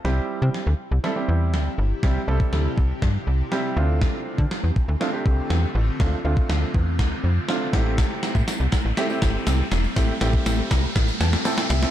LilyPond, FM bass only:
\new Staff \with { instrumentName = "FM bass" } { \clef bass \time 4/4 \key c \major \tempo 4 = 121 c,8 r16 c16 r16 d,16 r16 c,16 r8 e,8 d,8 g,,8 | c,8 c,8 d,8 c,8 g,8 c,8 r8 d,8~ | d,8 r16 d16 r16 e,16 r16 d,16 r8 c,8 e,8 a,,8 | d,8 d,8 d,8 e,8 d,8 f,8 r8 a,,8~ |
a,,8 r16 a,16 r16 c,16 r16 a,,16 r8 g,,8 c,8 e,,8 | a,,8 a,,8 a,,8 c,8 a,,8 e,8 r8 c,8 | }